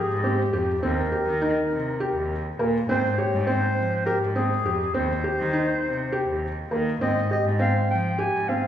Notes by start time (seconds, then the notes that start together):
Already playing: G4 G#4
0.09 G#2
0.23 C4 G4
0.53 F2 G4
0.82 D#2 C4 A#4
1.12 G4
1.26 D#3
1.42 D#4
1.71 C3
2.00 G4
2.15 D#2
2.59 A#2 A#3
2.88 G#2 C4 C5
3.18 G4 C#5
3.33 G#2
3.40 C#5
3.47 C4 C5
3.77 F3
4.06 G4 A#4
4.20 G#2
4.35 C4 G#4
4.65 F2 G4
4.94 D#2 C4 C5
5.24 G4
5.39 D#3
5.53 D#4
5.84 C3
6.12 G4
6.28 D#2
6.71 D#3 A#3
7.01 G#2 C4 D#5
7.31 G4 D#5
7.45 G#2
7.59 C4 F5
7.90 F3 G5
8.18 G4 G#5
8.34 G#2
8.49 C4 F5